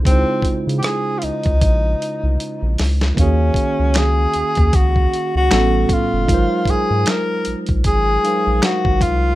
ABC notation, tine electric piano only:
X:1
M:4/4
L:1/8
Q:"Swing 16ths" 1/4=77
K:Ebdor
V:1 name="Tine electric piano"
[D,A,E_F=Fc]8 | [E,B,DGAf]6 [=A,,=G,=B,^C=A]2 | [G,A,EFBc]4- [G,A,EFBc] [G,A,EBcf]3 |]